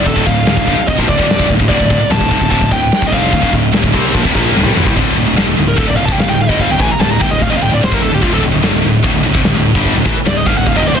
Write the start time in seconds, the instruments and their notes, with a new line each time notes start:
0.06 picked electric bass D1, distorted electric guitar D2 A2, lead electric guitar A4, kick, crash
0.16 picked electric bass D1, distorted electric guitar D2 A2, kick
0.26 picked electric bass D1, distorted electric guitar D2 A2, lead electric guitar F5, kick, crash
0.46 picked electric bass D1, distorted electric guitar D2 A2, snare, crash
0.57 picked electric bass D1, distorted electric guitar D2 A2, kick
0.67 picked electric bass G1, distorted electric guitar G2 D3, kick, crash
0.78 muted picked electric bass stroke, muted distorted electric guitar stroke
0.88 picked electric bass D1, distorted electric guitar D2 A2, lead electric guitar D#5, kick, crash
0.98 picked electric bass A#1, distorted electric guitar A#2 F3, kick
1.08 picked electric bass D1, distorted electric guitar D2 A2, lead electric guitar D5, kick, crash
1.18 picked electric bass D1, distorted electric guitar D2 A2, kick
1.27 picked electric bass D1, distorted electric guitar D2 A2, snare, crash
1.38 picked electric bass F1, distorted electric guitar F2 C3, kick
1.48 picked electric bass D1, distorted electric guitar D2 A2, kick, crash
1.59 picked electric bass D1, distorted electric guitar D2 A2, kick
1.69 picked electric bass D1, distorted electric guitar D2 A2, lead electric guitar D5, kick, crash
1.79 picked electric bass D1, distorted electric guitar D2 A2, kick
1.90 picked electric bass D1, distorted electric guitar D2 A2, kick, crash
2.00 muted picked electric bass stroke, muted distorted electric guitar stroke
2.09 picked electric bass D1, distorted electric guitar D2 A2, lead electric guitar A5, snare, crash
2.20 picked electric bass D1, distorted electric guitar D2 A2, kick
2.31 picked electric bass F1, distorted electric guitar F2 C3, kick, crash
2.41 picked electric bass D1, distorted electric guitar D2 A2, kick
2.50 picked electric bass D1, distorted electric guitar D2 A2, lead electric guitar A5, kick, crash
2.61 picked electric bass D1, distorted electric guitar D2 A2, kick
2.71 picked electric bass D1, distorted electric guitar D2 A2, lead electric guitar G5, kick, crash
2.92 snare, crash
3.02 picked electric bass D1, distorted electric guitar D2 A2, kick
3.07 lead electric guitar D#5
3.12 picked electric bass F1, distorted electric guitar F2 C3 F3, lead electric guitar F5, kick, crash
3.32 picked electric bass D1, distorted electric guitar D2 A2, kick, crash
3.41 picked electric bass D1, distorted electric guitar D2 A2, kick
3.52 picked electric bass D1, distorted electric guitar D2 A2, kick, crash
3.73 picked electric bass D1, distorted electric guitar D2 A2, snare, crash
3.83 picked electric bass D1, distorted electric guitar D2 A2, kick
3.93 picked electric bass C2, distorted electric guitar C3 G3 C4, kick, crash
4.13 picked electric bass A#1, distorted electric guitar A#2 F3, kick, crash
4.24 picked electric bass D1, distorted electric guitar D2 A2, kick
4.34 picked electric bass A#1, distorted electric guitar A#2 F3 A#3, kick, crash
4.53 picked electric bass D1, distorted electric guitar D2 A2, snare
4.63 picked electric bass C2, distorted electric guitar C3 G3, mid tom
4.74 picked electric bass A1, distorted electric guitar A2 E3, mid tom
4.84 picked electric bass C2, distorted electric guitar C3 G3, kick
4.95 picked electric bass D1, distorted electric guitar D2 A2 D3, kick, crash
5.15 picked electric bass D1, distorted electric guitar D2 A2, crash
5.26 picked electric bass D1, distorted electric guitar D2 A2
5.36 picked electric bass G1, distorted electric guitar G2 D3, snare, crash
5.46 picked electric bass D1, distorted electric guitar D2 A2
5.57 picked electric bass D1, distorted electric guitar D2 A2, crash
5.68 lead electric guitar A#4
5.76 picked electric bass D1, distorted electric guitar D2 A2, lead electric guitar A4, kick, crash
5.88 picked electric bass D1, distorted electric guitar D2 A2, lead electric guitar D5
5.97 picked electric bass D1, distorted electric guitar D2 A2, lead electric guitar F5, crash
6.05 picked electric bass F1, distorted electric guitar F2 C3, lead electric guitar A5, kick
6.12 lead electric guitar G5
6.18 picked electric bass D1, distorted electric guitar D2 A2, lead electric guitar F5, snare, crash
6.28 picked electric bass D1, distorted electric guitar D2 A2, lead electric guitar G5
6.40 lead electric guitar F5, crash
6.49 picked electric bass G1, distorted electric guitar G2 D3 G3, lead electric guitar D#5, kick
6.59 lead electric guitar F5, kick, crash
6.69 picked electric bass D1, distorted electric guitar D2 A2, lead electric guitar G5
6.79 picked electric bass A1, distorted electric guitar A2 E3, lead electric guitar G#5, kick, crash
6.90 lead electric guitar A#5, muted distorted electric guitar stroke, muted picked electric bass stroke
7.00 picked electric bass D1, distorted electric guitar D2 A2, lead electric guitar A5, snare, crash
7.11 lead electric guitar A#5
7.19 picked electric bass G1, distorted electric guitar G2 D3, lead electric guitar G5, kick, crash
7.29 picked electric bass D1, distorted electric guitar D2 A2, lead electric guitar D#5
7.39 picked electric bass D1, distorted electric guitar D2 A2, lead electric guitar F5, kick, crash
7.50 picked electric bass F1, distorted electric guitar F2 C3, lead electric guitar D#5
7.57 distorted electric guitar A2, lead electric guitar F5
7.61 picked electric bass D1, distorted electric guitar D2, lead electric guitar G5, crash
7.70 picked electric bass D1, distorted electric guitar D2 A2, lead electric guitar D5
7.81 picked electric bass D1, distorted electric guitar D2 A2, lead electric guitar C5, snare, crash
7.91 picked electric bass G1, distorted electric guitar G2 D3, lead electric guitar A#4, kick
8.02 picked electric bass D1, distorted electric guitar D2 A2, lead electric guitar A4, crash
8.11 picked electric bass D1, distorted electric guitar D2 A2, lead electric guitar G4
8.21 picked electric bass D1, distorted electric guitar D2 A2 D3, lead electric guitar F4, kick, crash
8.34 lead electric guitar A4
8.43 picked electric bass D1, distorted electric guitar D2 A2, crash
8.52 picked electric bass D1, distorted electric guitar D2 A2
8.63 picked electric bass G1, distorted electric guitar G2 D3, snare, crash
8.73 picked electric bass D1, distorted electric guitar D2 A2
8.82 picked electric bass D1, distorted electric guitar D2 A2, crash
9.03 picked electric bass D1, distorted electric guitar D2 A2, kick, crash
9.13 picked electric bass D1, distorted electric guitar D2 A2
9.23 picked electric bass D1, distorted electric guitar D2 A2, crash
9.33 picked electric bass F1, distorted electric guitar F2 C3, kick
9.43 picked electric bass D1, distorted electric guitar D2 A2, snare, crash
9.54 picked electric bass D1, distorted electric guitar D2 A2
9.65 crash
9.75 picked electric bass G1, distorted electric guitar G2 D3 G3, kick
9.85 kick, crash
9.95 picked electric bass D1, distorted electric guitar D2 A2
10.05 picked electric bass A1, distorted electric guitar A2 E3, kick, crash
10.15 muted distorted electric guitar stroke, muted picked electric bass stroke
10.25 picked electric bass D1, distorted electric guitar D2 A2, lead electric guitar D5, snare, crash
10.37 lead electric guitar D#5
10.46 picked electric bass G1, distorted electric guitar G2 D3, lead electric guitar F5, kick, crash
10.56 picked electric bass D1, distorted electric guitar D2 A2, lead electric guitar F#5
10.66 picked electric bass D1, distorted electric guitar D2 A2, lead electric guitar F5, kick, crash
10.75 picked electric bass F1, distorted electric guitar F2 C3, lead electric guitar D#5
10.84 picked electric bass D1, distorted electric guitar D2 A2, lead electric guitar D5, crash
10.94 picked electric bass D1, distorted electric guitar D2 A2, lead electric guitar C5